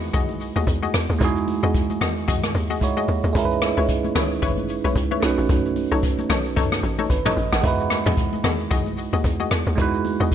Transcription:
Already playing: log drum bass E2, tine electric piano G#3 D#4 E4 F#4 B4
0.03 shaker
0.13 log drum bass B1, synth pluck F#4 G#4 D#5, kick, hi-hat pedal, low conga, shaker
0.29 high conga, shaker
0.40 open hi-hat, shaker
0.56 log drum bass D#2, synth pluck F#4 G#4 D#5, high conga, shaker
0.67 log drum bass E2, kick, hi-hat pedal, shaker
0.83 synth pluck F#4 G#4 D#5, high conga, shaker
0.94 log drum bass E2, cross-stick, open hi-hat, shaker
1.10 log drum bass D#2, high conga, shaker
1.19 log drum bass E2, tine electric piano G#3 D#4 E4, kick, hi-hat pedal, shaker
1.23 tine electric piano F#4 G#4
1.36 shaker
1.48 open hi-hat, high conga, shaker
1.63 log drum bass E2, synth pluck F#4 G#4 D#5, shaker
1.74 kick, hi-hat pedal, shaker
1.90 high conga, shaker
2.01 log drum bass E2, synth pluck F#4 G#4 D#5, cross-stick, open hi-hat, high conga, low conga, shaker
2.17 shaker
2.28 synth pluck F#4 G#4 D#5, kick, hi-hat pedal, low conga, shaker
2.43 cross-stick, high conga, shaker
2.54 log drum bass D#2, open hi-hat, shaker
2.70 synth pluck F#4 G#4 D#5, high conga, shaker
2.81 log drum bass C#2, tine electric piano G#3 D#4 E4 F#4 C#5, kick, hi-hat pedal, shaker
2.97 synth pluck F#4 G#4 D#5, high conga, shaker
3.08 log drum bass D#2, open hi-hat, shaker
3.24 log drum bass D#2, high conga, shaker
3.33 log drum bass C#2, tine electric piano G#3 C#4 D#4, kick, hi-hat pedal, shaker
3.37 tine electric piano E4 A#4
3.45 tine electric piano B4
3.51 shaker
3.62 cross-stick, open hi-hat, high conga, shaker
3.77 log drum bass C#2, synth pluck E4 B4 C#5, shaker
3.88 kick, hi-hat pedal, shaker
4.04 high conga, shaker
4.15 log drum bass C#2, synth pluck E4 B4 C#5, cross-stick, open hi-hat, high conga, low conga, shaker
4.31 shaker
4.42 log drum bass G#1, synth pluck E4 B4 C#5, kick, hi-hat pedal, low conga, shaker
4.58 high conga, shaker
4.69 open hi-hat, shaker
4.84 log drum bass B1, synth pluck E4 B4 C#5, high conga, shaker
4.96 log drum bass C#2, kick, hi-hat pedal, shaker
5.11 synth pluck E4 B4 C#5, high conga, shaker
5.20 log drum bass B1, tine electric piano A3 C#4 D#4, cross-stick, open hi-hat, shaker
5.25 tine electric piano F#4 B4
5.38 log drum bass A1, high conga, shaker
5.49 log drum bass B1, kick, hi-hat pedal, shaker
5.65 shaker
5.76 open hi-hat, high conga, shaker
5.92 log drum bass B1, synth pluck D#4 A4 C#5, shaker
6.03 kick, hi-hat pedal, shaker
6.19 high conga, shaker
6.30 log drum bass B1, synth pluck D#4 A4 C#5, cross-stick, open hi-hat, high conga, low conga, shaker
6.45 shaker
6.56 synth pluck D#4 A4 C#5, kick, hi-hat pedal, low conga, shaker
6.72 cross-stick, high conga, shaker
6.83 log drum bass A1, open hi-hat, shaker
6.99 synth pluck D#4 A4 C#5, high conga
7.10 log drum bass G#1, tine electric piano B4, kick, hi-hat pedal, shaker
7.25 synth pluck D#4 A4 C#5, tine electric piano D#5, mid tom, high conga, shaker
7.37 log drum bass A1, open hi-hat, shaker
7.52 log drum bass A1, tine electric piano F#5, cross-stick, shaker
7.61 log drum bass E2, tine electric piano G#3 D#4 E4, kick, hi-hat pedal, shaker
7.66 tine electric piano F#4 B4
7.79 shaker
7.90 cross-stick, open hi-hat, high conga, shaker
8.06 log drum bass E2, synth pluck F#4 G#4 D#5, mid tom, shaker
8.17 kick, hi-hat pedal, shaker
8.33 high conga, shaker
8.44 log drum bass E2, synth pluck F#4 G#4 D#5, cross-stick, open hi-hat, high conga, low conga, shaker
8.60 shaker
8.71 log drum bass B1, synth pluck F#4 G#4 D#5, kick, hi-hat pedal, low conga, shaker
8.86 high conga, shaker
8.97 open hi-hat, shaker
9.13 log drum bass D#2, synth pluck F#4 G#4 D#5, high conga, shaker
9.24 log drum bass E2, kick, hi-hat pedal, shaker
9.40 synth pluck F#4 G#4 D#5, high conga, shaker
9.51 log drum bass E2, cross-stick, open hi-hat, shaker
9.67 log drum bass D#2, high conga, shaker
9.76 log drum bass E2, tine electric piano G#3 D#4 E4, kick, hi-hat pedal, shaker
9.80 tine electric piano F#4 B4
9.94 shaker
10.05 open hi-hat, high conga, shaker
10.20 log drum bass E2, synth pluck F#4 G#4 D#5, shaker
10.31 kick, hi-hat pedal, shaker

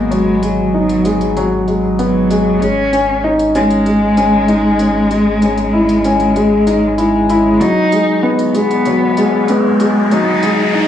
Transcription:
Already playing: analog synth bass G#1, felt piano F#3 G#3 B3, cello A#3
0.11 felt piano F#3, cello G#3, closed hi-hat
0.42 cello F#3, felt piano G#3, closed hi-hat
0.74 felt piano D#4
0.89 closed hi-hat
1.05 felt piano G#3, closed hi-hat
1.21 closed hi-hat
1.37 felt piano F#3, closed hi-hat
1.68 felt piano G#3, closed hi-hat
1.99 cello F#3, felt piano B3, closed hi-hat
2.30 felt piano G#3, closed hi-hat
2.60 analog synth bass G#1, felt piano G#3, cello C#4, closed hi-hat
2.93 felt piano C#4, closed hi-hat
3.24 felt piano D#4
3.39 closed hi-hat
3.55 cello G#3, felt piano C#4, closed hi-hat
3.71 closed hi-hat
3.86 felt piano G#3, closed hi-hat
4.17 felt piano C#4, closed hi-hat
4.48 felt piano D#4, closed hi-hat
4.79 felt piano C#4, closed hi-hat
5.11 felt piano G#3, closed hi-hat
5.42 felt piano C#4, closed hi-hat
5.58 closed hi-hat
5.73 felt piano E4
5.89 closed hi-hat
6.04 felt piano C#4, closed hi-hat
6.20 closed hi-hat
6.36 felt piano G#3, closed hi-hat
6.67 felt piano D#4, closed hi-hat
6.98 cello G#3, felt piano E4, closed hi-hat
7.29 felt piano E4, closed hi-hat
7.60 felt piano F#3, cello D#4, closed hi-hat, riser
7.92 felt piano G#3, closed hi-hat
8.23 felt piano B3
8.39 closed hi-hat
8.54 felt piano G#3, cello B3, closed hi-hat
8.71 closed hi-hat
8.85 felt piano F#3, closed hi-hat
9.17 felt piano G#3, closed hi-hat
9.48 cello G#3, felt piano B3, closed hi-hat
9.80 felt piano G#3, closed hi-hat
10.11 felt piano F#3, cello D#4, closed hi-hat
10.43 felt piano G#3, closed hi-hat
10.75 felt piano D#4

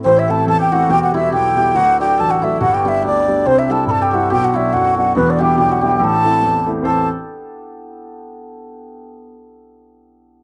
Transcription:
0.04 grand piano A1 A2, hammered dulcimer C4, flute C5
0.16 hammered dulcimer E4, flute E5
0.28 grand piano A3 C4 E4, hammered dulcimer A4, flute A5
0.47 grand piano E2, hammered dulcimer A4, flute A5
0.59 hammered dulcimer G4, flute G5
0.71 grand piano A3 C4 E4, hammered dulcimer F#4, flute F#5
0.89 grand piano E1 E2, hammered dulcimer G4, flute G5
1.03 hammered dulcimer F#4, flute F#5
1.12 grand piano G3 B3 E4, hammered dulcimer E4, flute E5
1.32 grand piano B1, hammered dulcimer G4, flute G5
1.56 grand piano G3 B3 E4, hammered dulcimer G4
1.75 grand piano D1 D2, hammered dulcimer F#4, flute F#5
1.99 grand piano F#3 A3 D4, hammered dulcimer G4, flute G5
2.18 grand piano A1, hammered dulcimer A4, flute A5
2.28 hammered dulcimer F#4, flute F#5
2.42 grand piano F#3 A3 D4, hammered dulcimer E4, flute E5
2.61 grand piano G1 G2, hammered dulcimer F#4, flute F#5
2.72 hammered dulcimer G4, flute G5
2.85 grand piano G3 B3 D4, hammered dulcimer E4, flute E5
3.03 grand piano D2, hammered dulcimer D4, flute D5
3.27 grand piano G3 B3 D4
3.45 grand piano C2 C3, hammered dulcimer C4, flute C5
3.59 hammered dulcimer E4, flute E5
3.69 grand piano G3 C4 E4, hammered dulcimer A4, flute A5
3.87 grand piano G2, hammered dulcimer A4, flute B5
3.91 flute A5
4.01 hammered dulcimer G4, flute G5
4.11 grand piano G3 C4 E4, hammered dulcimer F#4, flute F#5
4.30 grand piano B1 B2, hammered dulcimer G4, flute G5
4.41 hammered dulcimer F#4, flute F#5
4.54 grand piano F#3 B3 D4, hammered dulcimer E4, flute E5
4.72 grand piano F#2, hammered dulcimer F#4, flute F#5
4.77 hammered dulcimer F#4
4.84 hammered dulcimer F#4
4.95 grand piano F#3 B3 D4, hammered dulcimer F#4, flute F#5
5.15 grand piano E1 E2, hammered dulcimer B3, flute B4
5.26 hammered dulcimer D4, flute D5
5.38 grand piano G3 B3 E4, hammered dulcimer G4, flute G5
5.58 grand piano B1, hammered dulcimer G4, flute G5
5.69 hammered dulcimer F#4, flute F#5
5.81 grand piano G3 B3 E4, hammered dulcimer G4, flute G5
5.91 hammered dulcimer G4, flute G5
5.99 grand piano A1 A2, hammered dulcimer A4
6.04 flute A5
6.24 grand piano A3 C4 E4
6.43 grand piano E2
6.66 grand piano A3 C4 E4
6.82 grand piano A1 E2 E3 C4 A4 C5, hammered dulcimer A4
6.86 flute A5

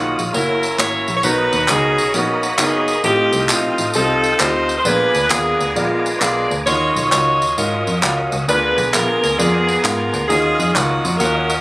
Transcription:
Already playing: fm bass B1, grand piano D#3 A#3 D#4 F4 F#4 A#4, saxophone section A#3 C#4 F4 F#4, tonewheel organ C#5 F5 D#6
0.19 fm bass A#1, tambourine
0.32 fm bass F#1, grand piano A#3 C#4 E4 F#4 C#5, saxophone section C#4 E4 A#4, tonewheel organ C#5 A#5 E6, tambourine
0.63 tambourine
0.79 fm bass G#1, grand piano A#3 C#4 E4 F#4 C#5, saxophone section E4 A#4 C#5, clap, tambourine
1.08 fm bass A#1, tambourine
1.17 saxophone section C#5
1.23 fm bass B1, grand piano B2 B3 D#4 F#4 A#4 C#5, saxophone section D#4 F#4 B4, tonewheel organ B5 D#6, tambourine
1.53 fm bass D#2, tambourine
1.68 fm bass C#2, grand piano B3 D#4 F#4 A#4 D#5, saxophone section C#4 D#4 G#4, clap, tambourine
1.98 fm bass B1, tambourine
2.14 fm bass A#1, saxophone section A#3 D#4 F#4, grand piano B3 D#4 F#4 A#4 C#5, tambourine
2.43 tambourine
2.58 fm bass F#1, grand piano B3 D#4 F#4 A#4 C#5, saxophone section C#4 D#4 G#4, clap, tambourine
2.88 tambourine
3.04 fm bass A1, grand piano A2 C4 F4 G4 A4 D#5, saxophone section C4 D#4 G4, tonewheel organ A4 F5 G5, tambourine
3.33 fm bass C2, tambourine
3.49 fm bass A#1, grand piano C4 F4 G4 A4 D#5, saxophone section C4 F4, clap, tambourine
3.78 fm bass A1, tambourine
3.94 fm bass C2, grand piano C4 F4 G4 A4 D#5, saxophone section C4 D#4 A4, tambourine
4.24 tambourine
4.40 fm bass D2, grand piano C4 F4 G4 A4 C5, saxophone section D#4 F4 C5, clap, tambourine
4.69 tambourine
4.78 saxophone section C5
4.85 fm bass A#1, grand piano A#2 B3 F4 G#4 A#4 D5, saxophone section D4 G#4 B4, tonewheel organ B4 G#5 A#5 D6, tambourine
5.15 fm bass D2, tambourine
5.30 fm bass D#2, grand piano B3 F4 G#4 A#4 F5, saxophone section B3 D4 G#4, clap, tambourine
5.60 fm bass D2, tambourine
5.76 fm bass A#1, saxophone section G#3 D4 F4, grand piano B3 F4 G#4 A#4 D5, tambourine
6.06 tambourine
6.20 fm bass B1, grand piano B3 F4 G#4 A#4 F5, saxophone section F4 G#4 D5, clap, tambourine
6.51 fm bass D2, tambourine
6.66 fm bass D#2, grand piano D#3 C#4 F4 F#4 A#4 D#5, saxophone section F4 F#4 C#5, tonewheel organ C#5 D#5 F5 D#6, tambourine
6.96 fm bass B1, tambourine
7.12 fm bass C#2, grand piano C#4 F4 F#4 A#4 D#5, saxophone section F4 F#4 C#5, clap, tambourine
7.42 fm bass D#2, tambourine
7.57 fm bass G#2, grand piano C#4 F4 F#4 A#4 D#5, saxophone section C#4 F#4 A#4, tambourine
7.87 fm bass F2, tambourine
8.03 fm bass C#2, grand piano C#4 F4 F#4 A#4 F5, clap, tambourine
8.32 fm bass C#2, tambourine
8.48 fm bass D2, grand piano D3 B3 F4 G#4 A#4 D5, tonewheel organ B3 G#5 A#5, saxophone section F4 G#4 B4, tambourine
8.78 fm bass B1, tambourine
8.93 fm bass A#1, grand piano B3 F4 G#4 A#4 F5, saxophone section F4 A#4, clap, tambourine
9.24 fm bass D2, tambourine
9.38 fm bass F2, grand piano B3 F4 G#4 A#4 D5, saxophone section B3 F4 G#4, tambourine
9.69 tambourine
9.83 fm bass G#2, grand piano B3 F4 G#4 A#4 F5, saxophone section F4 A#4, clap, tambourine
10.14 fm bass D2, tambourine
10.28 fm bass D#2, grand piano D#3 C#4 F4 F#4 A#4 D#5, saxophone section C#4 F4 G#4, tonewheel organ C#5 D#5 F5 D#6, tambourine
10.59 fm bass F2, tambourine
10.73 fm bass C#2, saxophone section A#3 C#4 F#4, grand piano C#4 F4 F#4 A#4 C#5, clap, tambourine
11.04 fm bass F2, tambourine
11.18 fm bass D#2, saxophone section C#4 F#4 A#4, grand piano C#4 F4 F#4 A#4 F#5, tambourine
11.50 tambourine

